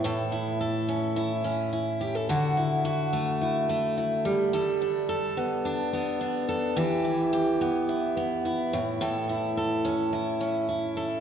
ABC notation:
X:1
M:4/4
L:1/16
Q:1/4=107
K:D
V:1 name="Steel-string acoustic guitar"
[A,,A]2 E2 A2 C2 E2 C2 E2 G A | [D,F]2 E2 F2 A,2 E2 A,2 E2 G,2 | [G,A]2 D2 A2 B,2 D2 B,2 D2 A2 | [E,G]2 E2 G2 B,2 E2 B,2 E2 A,,2 |
[A,,A]2 E2 A2 C2 E2 C2 E2 A2 |]